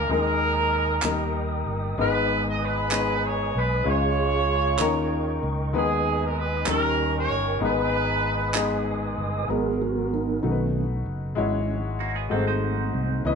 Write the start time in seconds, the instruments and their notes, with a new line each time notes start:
Already playing: upright piano A#2 G#3 D4 F4 A#4, tonewheel organ A#4 G#5
0.09 fingered electric bass D#2, upright piano D#3 G#3 A#3 D#4 A#4, horn section D#4 A#4, tonewheel organ D#5 D#6
1.02 fingered electric bass D#2, upright piano D#3 G3 A#3 D#4 A#4, tonewheel organ A#4 G5, clap
1.66 fingered electric bass G1
1.97 fingered electric bass G#1, upright piano G#2 G#3 B3 D#4 B4, horn section D#4 G#4 B4, tonewheel organ B4 D#5 G#5 D#6
2.47 horn section D#5
2.62 horn section D#4 G#4 B4
2.91 upright piano G#3 B3 D#4 C#5, clap
3.26 horn section C#5
3.55 fingered electric bass B1, horn section B4
3.84 fingered electric bass C#2, upright piano C#3 G#3 C#4 F4 C#5, tonewheel organ G#4 C#5 F5 C#6
3.88 horn section F4 G#4 C#5
4.78 fingered electric bass D#2, upright piano D#3 A#3 C#4 D#4 A#4, tonewheel organ A#4 D#5 G5, clap
5.43 fingered electric bass C#2
5.73 fingered electric bass D#2, upright piano D#3 G#3 B3 D#4 B4, horn section B3 D#4, tonewheel organ B4 D#5 G#5 D#6
5.77 horn section G#4
6.23 horn section A#4
6.38 horn section B4
6.65 fingered electric bass D#2, upright piano D#3 G3 C#4 D#4 A#4, horn section C#4 G4 A#4, tonewheel organ A#4 G5 C#6, clap
7.16 horn section G4 A#4 C#5
7.30 fingered electric bass G1
7.60 fingered electric bass G#1, upright piano G#2 G#3 B3 D#4 A#4, horn section D#4 B4, tonewheel organ B4 G#5 D#6
7.65 horn section G#4
7.69 upright piano B4
8.54 upright piano G#3 B3 D#4 G#4, clap
9.18 fingered electric bass G1
9.43 tonewheel organ B4
9.48 fingered electric bass G#1, upright piano G#2 G#3 B3 F#4 A#4, tonewheel organ F#3 B3 G#4 A#4
9.82 tonewheel organ F#4
10.14 tonewheel organ D#4
10.42 fingered electric bass B1, upright piano B2 A3 D#4 F#4 A#4, tonewheel organ D#3 A3 C#4
10.51 upright piano B4
11.06 fingered electric bass F#1
11.35 fingered electric bass G#1, upright piano G#2 G#3 E4 F#4 C#5, tonewheel organ F#3 G#3 C#4
12.00 clean electric guitar A#3 F#4
12.15 clean electric guitar B3 G#4
12.29 fingered electric bass G#1, upright piano G#2 A3 F#4 G#4 C5, tonewheel organ F#3 A3 C4, clean electric guitar C4 A4
12.47 clean electric guitar D#4 C5
12.94 fingered electric bass C2
13.25 fingered electric bass C#2, upright piano C#3 C#4 E4 B4 D#5, tonewheel organ E3 B3 D#5